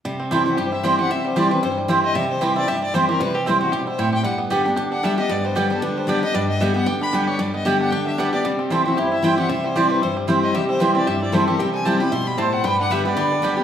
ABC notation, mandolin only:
X:1
M:4/4
L:1/8
Q:"Swing" 1/4=229
K:Clyd
V:1 name="Mandolin"
z2 [CEcg] z3 [CEcg] z | z2 [CEcg] z3 [CEcg] z | z2 [CEcg] z3 [CEcg] z | z2 [CEcg] z3 [CEcg] z |
z2 [B,Gdg] z3 [B,Gdg] z | z2 [B,Gdg] z3 [B,Gdg] z | z2 [B,Gdg] z3 [B,Gdg] z | z2 [B,Gdg] z3 [B,Gdg] z |
z2 [CEcg] z3 [CEcg] z | z2 [CEcg] z3 [CEcg] z | z2 [CEcg] z3 [CEcg] z | z2 [CEcg] z3 [CEcg] z |
z2 [B,Gdg] z3 [B,Gdg] z |]